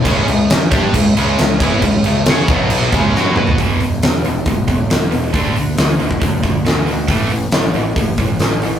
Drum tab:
CC |x-x-x-x-x-x-x-x-|x-x-x-x-x-x-----|----------------|----------------|
HH |----------------|----------------|o-o-o-o-o-o-o-o-|o-o-o-o-o-o-o-o-|
SD |----o-------o---|----o-------o---|----o-------o---|----o-------o---|
T2 |----------------|--------------o-|----------------|----------------|
FT |----------------|---------------o|----------------|----------------|
BD |o-----o-o-----o-|o-----o---o-----|o-------o-o-----|o------oo-o-----|

CC |----------------|
HH |o-o-o-o-o-o-o-o-|
SD |----o-------o---|
T2 |----------------|
FT |----------------|
BD |o-------o-o-----|